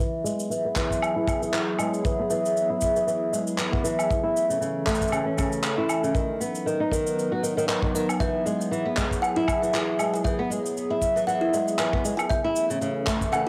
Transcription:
0.00 E3 F#3 B3 E4 G#4, cabasa
0.24 G#3, cabasa
0.40 cabasa
0.50 E3, cabasa
0.65 B3
0.76 E3, kick, clap, cabasa
0.91 kick, cabasa
1.02 cabasa, low woodblock
1.16 E4
1.27 kick, cabasa, low woodblock
1.42 E3, cabasa
1.53 E3, clap, cabasa
1.79 G#3, cabasa, low woodblock
1.94 cabasa
2.05 E3, kick, cabasa
2.19 B3
2.30 E3, cabasa
2.45 cabasa
2.57 cabasa
2.70 E4
2.81 kick, cabasa
2.96 E3, cabasa
3.07 E3, cabasa
3.33 G#3, cabasa
3.47 cabasa
3.58 E3, clap, cabasa
3.72 B3, kick
3.83 E3, cabasa
3.99 cabasa, low woodblock
4.10 E3 A3 C#4 A4, kick, cabasa
4.23 E4
4.37 cabasa
4.49 C#3, cabasa
4.61 C#3, cabasa
4.86 A3, kick, clap, cabasa
4.95 cabasa
5.01 kick, cabasa
5.08 C#3, cabasa
5.12 cabasa, low woodblock
5.26 C#4
5.37 C#3, kick, cabasa, low woodblock
5.52 cabasa
5.64 clap, cabasa
5.78 E4
5.89 cabasa, low woodblock
6.03 C#3, cabasa
6.15 D#3 F#3 B3 D#4 B4, kick, cabasa
6.40 B3, cabasa
6.55 cabasa
6.66 D#3, cabasa
6.80 D#4
6.92 D#3, kick, cabasa
7.07 cabasa
7.19 cabasa
7.32 F#4
7.43 D#3, cabasa
7.57 D#3, cabasa
7.68 D#3, clap, cabasa
7.82 D#3, kick
7.95 D#3, cabasa
8.09 cabasa, low woodblock
8.20 E3 E4 G#4 E5, kick, cabasa
8.46 G#3, cabasa
8.61 cabasa
8.71 E3, cabasa
8.85 B3
8.96 G#3, kick, clap, cabasa
9.11 kick, cabasa
9.22 F#5, cabasa, low woodblock
9.36 E4
9.48 kick, cabasa, low woodblock
9.62 E3, cabasa
9.73 E3 G#5, clap, cabasa
9.99 G#3, cabasa, low woodblock
10.14 G#5, cabasa
10.24 E3 E5, kick, cabasa
10.39 B3
10.50 G#3, cabasa
10.66 cabasa
10.77 cabasa
10.90 E4
11.02 kick, cabasa
11.16 E3, cabasa
11.27 E3 F#5, cabasa
11.41 E4
11.53 G#3, cabasa
11.68 cabasa
11.78 E3 G#5, clap, cabasa
11.93 B3, kick
12.05 G#3, cabasa
12.17 G#5, cabasa, low woodblock
12.30 E3 A3 C#4 A4 E5, kick, cabasa
12.44 E4
12.56 cabasa
12.70 C#3, cabasa
12.81 C#3, cabasa
13.06 A3, kick, clap, cabasa
13.21 kick, cabasa
13.32 C#3 F#5, cabasa, low woodblock

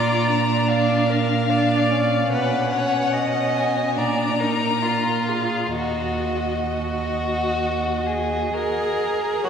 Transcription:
Already playing: A#2 F4 D5 A#5
0.28 D4
0.68 D5 F5
1.10 A#4
1.49 D4 D5
1.91 C#4
2.32 B2 B4 F#5
2.74 C#5
3.13 D#5
3.56 G#5
3.96 A#2 D4 D5 A#5
4.40 D#4 A#4
4.83 F4
5.29 G#4 F5
5.75 D#2 F#4 D#5
6.68 F#4
8.07 G#4
8.54 G#4 A#4
9.43 F#3 F#4 C#5 F#5

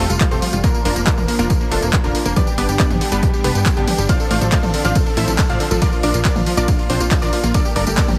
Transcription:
Already playing: G3 A3 F4
0.10 F1 G3 F4 F5, closed hi-hat, tambourine
0.20 A3 F4 F5, kick, clap, closed hi-hat
0.31 F1 C3 C4 G4 A4 C5 C6, closed hi-hat, tambourine
0.42 F3 F4 F5, open hi-hat
0.53 F1 G3 F4 F5, tambourine
0.64 D3 F3 A#3 D4 F4 A#4 A#5, kick, closed hi-hat, tambourine
0.74 A#3 A#4, tambourine
0.85 F1 A#3 D4 F4 A#4 A#5, open hi-hat
0.96 F1 A#3 A#4, closed hi-hat, tambourine
1.07 A#3 D4 F4 A#4 A#5, kick, clap, closed hi-hat, tambourine
1.18 F1 D3 A#3 A#4, mid tom, tambourine
1.28 F3 A#3 A#4, open hi-hat
1.39 F1 A#3 D4 F4 A#4 A#5, tambourine
1.50 D3 A#3 A#4, kick, closed hi-hat, tambourine
1.61 A#3 A#4, tambourine
1.71 F1 A3 D4 F4 A4 A5, open hi-hat
1.82 F1 A#3 A#4, closed hi-hat, tambourine
1.93 A#3 D4 A#4, kick, clap, closed hi-hat, tambourine
2.04 F1 D3 A#3 D4 F4 A#4 A#5, closed hi-hat, tambourine
2.15 F3 A#3 A#4, open hi-hat
2.25 F1 A#3 A#4, closed hi-hat, tambourine
2.36 B2 G3 B3 D4 G4 B4 D5 D6, kick, closed hi-hat, mid tom, tambourine
2.47 G4 G5, closed hi-hat, tambourine
2.58 G1 B3 D4 G4 B4 D5 D6, open hi-hat
2.69 G1 G3 G4 G5, closed hi-hat, tambourine
2.79 B3 D4 G4 B4 D5 D6, kick, clap, closed hi-hat, tambourine
2.90 G1 B2 G4 G5, closed hi-hat, mid tom, tambourine
3.01 D3 G4 G5, open hi-hat
3.12 G1 G3 B3 D4 G4 B4 B5, closed hi-hat, tambourine
3.23 B2 G4 G5, kick, closed hi-hat, tambourine
3.34 G4 G5, tambourine
3.44 F1 B3 D4 G4 B4 B5, open hi-hat
3.55 G2 G3 G4 G5, closed hi-hat, tambourine
3.66 B3 G4 G5, kick, clap, closed hi-hat, tambourine
3.77 G1 B2 G3 B3 D4 G4 G5, closed hi-hat, tambourine
3.88 D3 G4 G5, open hi-hat, mid tom
3.98 G1 G3 G4 G5, closed hi-hat, tambourine
4.09 C3 F3 C4 F4 C5 D5 F5 F6, kick, closed hi-hat, ride, tambourine
4.20 A4 A5, tambourine
4.31 A1 A3 F4 C5 D5 F5 F6, open hi-hat
4.41 A1 F3 A4 A5, closed hi-hat, tambourine
4.52 A3 F4 C5 D5 F5 F6, kick, clap, closed hi-hat, ride, tambourine
4.63 A1 C3 A4 A5, mid tom, tambourine
4.74 D3 A4 A5, open hi-hat
4.85 A1 F3 F4 C5 D5 F5 F6, closed hi-hat, tambourine
4.95 C3 A4 A5, kick, closed hi-hat, ride, tambourine
5.06 A4 A5, tambourine
5.17 A1 A3 E4 A4 C5 E5 E6, open hi-hat
5.28 A1 F3 A4 A5, closed hi-hat, tambourine
5.39 A3 A4 A5, kick, clap, closed hi-hat, ride, tambourine
5.49 A1 C3 F4 C5 D5 F5 F6, closed hi-hat, tambourine
5.60 D3 A4 A5, open hi-hat
5.71 A1 F3 A4 A5, closed hi-hat, tambourine
5.82 D3 A#3 D4 F4 A#4 D5 D6, kick, closed hi-hat, mid tom, ride, tambourine
5.93 F4 F5, tambourine
6.03 A#1 D4 F4 A#4 D5 D6, open hi-hat
6.14 A#1 A#3 F4 F5, closed hi-hat, tambourine
6.25 D4 F4 A#4 D5 D6, kick, clap, closed hi-hat, ride, tambourine
6.36 A#1 D3 F4 F5, mid tom, tambourine
6.46 F3 F4 F5, open hi-hat
6.57 A#1 A#3 D4 F4 A#4 D5 D6, closed hi-hat, tambourine
6.68 D3 F5, kick, closed hi-hat, ride, tambourine
6.79 F4 F5, tambourine
6.90 A#1 C4 D4 F4 C5 C6, open hi-hat
7.00 A#1 A#3 F4 F5, closed hi-hat, tambourine
7.11 D4 F4 F5, kick, clap, closed hi-hat, ride, tambourine
7.22 A#1 D3 D4 F4 A#4 D5 D6, closed hi-hat, tambourine
7.33 F3 F4 F5, open hi-hat
7.43 A#1 A#3 F4 F5, closed hi-hat, tambourine
7.54 D3 G3 A3 D4 A4 A#4 D5 D6, kick, closed hi-hat, ride, tambourine
7.65 G4 G5, tambourine
7.76 G1 A#3 D4 A4 A#4 D5 D6, open hi-hat
7.87 G1 A3 G4 G5, closed hi-hat, tambourine
7.97 A#3 D4 A4 A#4 D5 D6, kick, clap, closed hi-hat, ride, tambourine
8.08 G1 D3 G4 G5, mid tom, tambourine

